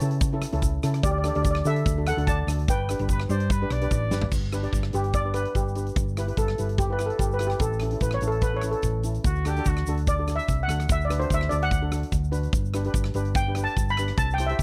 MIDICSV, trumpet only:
0, 0, Header, 1, 2, 480
1, 0, Start_track
1, 0, Key_signature, 1, "major"
1, 0, Tempo, 410678
1, 1219, Time_signature, 4, 2, 24, 8
1, 17096, End_track
2, 0, Start_track
2, 0, Title_t, "Trumpet"
2, 0, Program_c, 0, 56
2, 3638, Note_on_c, 0, 71, 89
2, 3740, Note_off_c, 0, 71, 0
2, 3853, Note_on_c, 0, 72, 89
2, 4106, Note_on_c, 0, 71, 92
2, 4123, Note_off_c, 0, 72, 0
2, 4349, Note_on_c, 0, 74, 99
2, 4367, Note_off_c, 0, 71, 0
2, 4581, Note_off_c, 0, 74, 0
2, 4588, Note_on_c, 0, 74, 93
2, 5027, Note_off_c, 0, 74, 0
2, 10823, Note_on_c, 0, 66, 99
2, 11083, Note_on_c, 0, 67, 111
2, 11100, Note_off_c, 0, 66, 0
2, 11316, Note_on_c, 0, 66, 96
2, 11333, Note_off_c, 0, 67, 0
2, 11673, Note_off_c, 0, 66, 0
2, 17096, End_track
0, 0, End_of_file